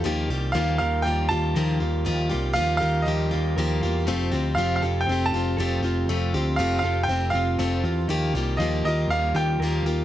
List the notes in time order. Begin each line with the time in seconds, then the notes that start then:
0.04 D#2 D#3 F3 A#3 F4 G4
0.28 C2 G3 F4 G4
0.33 A#3
0.52 D#2 D#3 F3 A#3 F4 F5
0.57 G4
0.78 D#2 A#3 F4 G4 A#4 F5
1.02 D#2 F3 G3 A#3 G5
1.07 F4 G4
1.29 D#2 A#3 F4 G4 A5
1.55 D#2 D#3 F3 A#3 F4 G4 A#4
1.80 D#2 A#3 F4 G4
2.05 D#2 D#3 F3 A#3 F4 G4
2.29 C2 G3 A#3 F4 G4
2.53 D#3 F3 A#3 F4 G4 F5
2.57 D#2
2.77 G4 A#4 F5
2.81 D#2 A#3 F4
3.02 F3 G3 D#5
3.06 D#2 A#3 F4 G4
3.31 D#2 A#3 F4 G4
3.56 D#2 D#3 F3 A#3 F4 G4 A#4
3.83 E2 A#3 F4 G4
4.07 F1 F3 A3 C4 F4 G4
4.32 D2 C4 F4 G4
4.55 F1 F3 A3 C4 F4 G4 F5
4.76 F5
4.81 F1 C4 F4 G4 A4
5.01 G5
5.07 F1 A3 C4 F4
5.12 G4
5.26 A5
5.33 F1 F4 G4
5.37 C4
5.57 F1 F3 A3 C4 F4 G4 A4
5.81 F1 F4 G4
5.86 C4
6.07 F1 F3 A3 C4 F4 G4
6.34 D2 C4 F4 G4
6.56 F1 F3 A3 C4 F4 G4 F5
6.79 F1 G4 F5
6.84 C4 F4 A4
7.03 G5
7.08 F1 A3 C4 F4 G4
7.30 F1 G4 F5
7.35 C4 F4
7.58 F1 F3 A3 C4 F4 G4 A4
7.83 E2 C4 F4 G4
8.08 D#2 D#3 F3 A#3 F4 G4
8.33 C2 G3 A#3 F4 G4
8.57 D#2 D#3 F3 D#5
8.61 A#3 F4 G4
8.84 D#2 G4 A#4 D#5
8.88 A#3 F4
9.08 D#2 F3 G3 F5
9.12 A#3 F4 G4
9.34 D#2 A#3 F4 G4 G5
9.59 D#2 D#3 F3 A#4
9.63 A#3 F4 G4
9.83 D#2 F4 G4
9.87 A#3